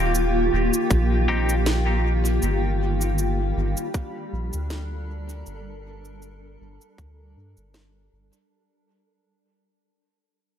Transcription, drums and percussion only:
0.15 shaker
0.74 shaker
0.91 kick, shaker
1.49 shaker
1.66 snare, shaker
2.25 shaker
2.42 shaker
3.01 shaker
3.18 shaker
3.77 shaker
3.94 kick, shaker
4.53 shaker
4.70 snare, shaker
5.29 shaker
5.46 shaker
6.05 shaker
6.22 shaker
6.81 shaker
6.98 kick, shaker
7.57 shaker
7.74 snare, shaker
8.33 shaker

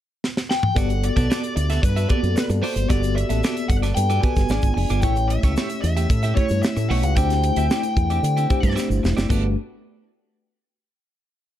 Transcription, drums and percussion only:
0.24 snare
0.37 snare
0.51 snare
0.63 mid tom
0.76 kick, closed hi-hat, shaker
0.90 closed hi-hat, shaker
1.03 closed hi-hat
1.17 kick, closed hi-hat, shaker
1.31 snare, shaker
1.44 closed hi-hat, shaker
1.57 closed hi-hat, shaker
1.70 snare, closed hi-hat, shaker
1.83 kick, closed hi-hat, shaker
1.97 closed hi-hat, shaker
2.10 kick, closed hi-hat
2.24 closed hi-hat, shaker
2.37 snare, shaker
2.49 closed hi-hat, shaker
2.63 open hi-hat
2.76 closed hi-hat, shaker
2.90 kick, closed hi-hat, shaker
3.03 closed hi-hat, shaker
3.18 closed hi-hat
3.30 closed hi-hat, shaker
3.43 snare, shaker
3.57 closed hi-hat, shaker
3.70 kick, closed hi-hat, shaker
3.83 snare, closed hi-hat, shaker
3.97 closed hi-hat, shaker
4.10 closed hi-hat, shaker
4.23 kick, closed hi-hat
4.36 kick, snare, closed hi-hat, shaker
4.49 snare, shaker
4.62 kick, closed hi-hat, shaker
4.78 open hi-hat
4.89 closed hi-hat, shaker
5.02 kick, closed hi-hat, shaker
5.16 closed hi-hat, shaker
5.30 closed hi-hat
5.43 kick, closed hi-hat, shaker
5.56 snare, shaker
5.70 closed hi-hat, shaker
5.83 closed hi-hat, shaker
5.97 closed hi-hat, shaker
6.10 kick, closed hi-hat, shaker
6.23 closed hi-hat, shaker
6.37 kick, closed hi-hat
6.49 closed hi-hat, shaker
6.63 snare, shaker
6.77 closed hi-hat, shaker
6.91 open hi-hat
7.03 closed hi-hat, shaker
7.16 kick, closed hi-hat, shaker
7.30 snare, closed hi-hat, shaker
7.43 closed hi-hat, shaker
7.56 closed hi-hat, shaker
7.71 snare, shaker
7.83 closed hi-hat, shaker
7.97 kick, closed hi-hat
8.10 closed hi-hat, shaker
8.24 closed hi-hat, shaker
8.37 closed hi-hat, shaker
8.50 kick, closed hi-hat, shaker
8.63 kick, closed hi-hat, shaker
8.77 snare, shaker
8.91 shaker
9.04 snare, shaker
9.17 snare, shaker
9.30 kick, crash, shaker

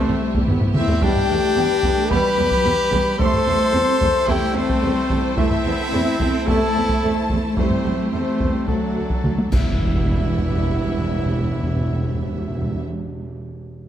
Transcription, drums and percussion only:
0.35 taiko
0.48 taiko low-mid
0.61 taiko low-mid
0.74 taiko mid
0.88 taiko low
1.02 taiko
1.16 taiko low-mid
1.83 taiko
2.11 taiko
2.51 taiko
2.93 taiko
3.20 taiko
3.34 taiko low-mid
4.01 taiko
4.28 taiko
4.70 taiko
5.10 taiko
5.37 taiko
5.50 taiko low-mid
6.20 taiko
6.48 taiko
6.89 taiko
7.30 taiko
7.57 taiko
7.70 taiko low-mid
8.40 taiko
8.68 taiko
9.10 taiko
9.24 taiko mid
9.38 taiko high
9.52 concert bass drum, taiko, crash

